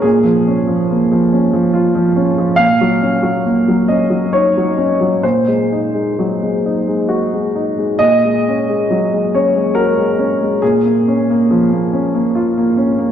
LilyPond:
<<
  \new Staff \with { instrumentName = "Upright piano" } { \time 3/4 \key bes \minor \tempo 4 = 69 aes'2~ aes'8 r8 | f''4. ees''8 des''4 | c''2~ c''8 r8 | ees''4. des''8 bes'4 |
aes'2~ aes'8 r8 | }
  \new Staff \with { instrumentName = "Upright piano" } { \clef bass \time 3/4 \key bes \minor bes,16 f16 des'16 f16 bes16 f16 des'16 f16 f'16 f16 des'16 f16 | bes,16 ges16 des'16 ges16 bes16 ges16 des'16 ges16 ees'16 ges16 des'16 ges16 | bes,16 aes16 ees'16 aes16 ges16 aes16 ees'16 aes16 ges'16 aes16 ees'16 aes16 | bes,16 aes16 des'16 aes16 ges16 aes16 des'16 aes16 ges'16 aes16 des'16 aes16 |
bes,16 bes16 des'16 bes16 f16 bes16 des'16 bes16 f'16 bes16 des'16 bes16 | }
>>